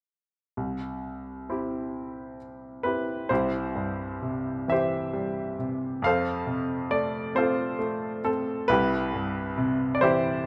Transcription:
0.57 C2
1.50 C4 E4 G4
2.83 C4 E4 G4 B4
3.29 C2 E4 G4 C5
3.75 G2
4.22 C3
4.68 E3 G4 C5 E5
5.13 G3
5.59 C3
6.02 F2 A4 F5
6.06 C5
6.46 C3
6.91 A3 D5
7.35 C4 F4 A4 C5
7.79 A3
8.24 C4 A4
8.68 C2 E4 G4 B4
9.14 G2
9.58 C3
9.95 D5
10.01 E3 E4 G4 C5

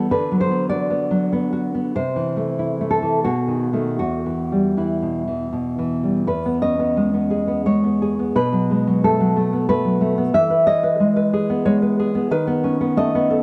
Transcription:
Already playing: G3 B3
0.11 D3 B4
0.32 F#3
0.41 C5
0.51 B3
0.69 F#4 D5
0.90 B3
1.11 F#3
1.33 B3
1.53 F#4
1.75 B3
1.96 C3 C5
2.16 E3
2.37 A3
2.59 E4
2.81 A3
2.91 A4
3.02 E3
3.24 B2 F#4
3.48 D#3
3.73 D#3 A3
3.99 E2 F#4
4.26 E3
4.52 G3
4.77 E3 E4
5.02 B2
5.28 E3
5.53 B2
5.79 E3
6.03 G3
6.27 E2 B4
6.46 B3
6.62 C#4 D#5
6.79 B3
6.97 G#3
7.14 B3
7.30 G#4
7.47 B3
7.66 G#3 C#5
7.84 B3
8.02 G#4
8.19 B3
8.35 B2 B4
8.53 F#3
8.70 G#3
8.87 F#3
9.04 A3 A4
9.20 F#3
9.36 A3
9.53 B3
9.69 A3 B4
9.85 F#3
10.01 A3
10.18 B3
10.34 E3 E5
10.50 B4
10.67 C#5 D#5
10.83 B4
11.00 G#3
11.16 B4
11.33 G#4
11.50 B3
11.65 G#3 C#5
11.82 B4
12.00 G#4
12.15 B3
12.31 D#3 B4
12.47 B3
12.64 C#4
12.81 B3
12.97 A3 D#5
13.15 B3
13.30 A4

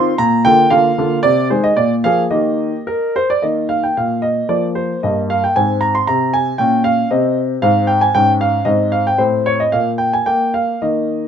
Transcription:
Already playing: D#3 C4 F4 C6
0.18 A#2 A#5
0.45 D3 A#3 F4 G5
0.70 D3 A#3 F4 F5
0.98 D3 A#3 F4
1.23 C3 D5
1.50 D#3 G#3 G#4 C5
1.64 D#5
1.77 A#2 D5
2.04 F3 A#3 G#4 F5
2.31 D#3 A#3 G4 D#5
2.87 A#4
3.16 C5
3.30 D5
3.42 D#3 A#3 D#5
3.69 F5
3.83 G5
3.97 A#2 F5
4.22 D#5
4.49 F3 A#3 D5
4.75 C5
5.03 G2 A#3 D#5
5.30 F5
5.44 G5
5.56 G#2 C4 G#5
5.81 A#5
5.95 C6
6.07 C3 A#5
6.33 G#5
6.58 A#2 C#4 G5
6.84 F5
7.11 C3 C4 D#5
7.62 G#2 C4 F5
7.87 G5
8.01 G#5
8.15 G#2 C#4 G5
8.41 F5
8.65 G#2 C4 D#5
8.92 F5
9.07 G5
9.18 A2 C4 C5
9.46 C#5
9.60 D#5
9.72 A#2 A#3 F5
9.98 G5
10.13 G#5
10.26 A#3 G5
10.54 F5
10.82 D#3 A#3 D#5

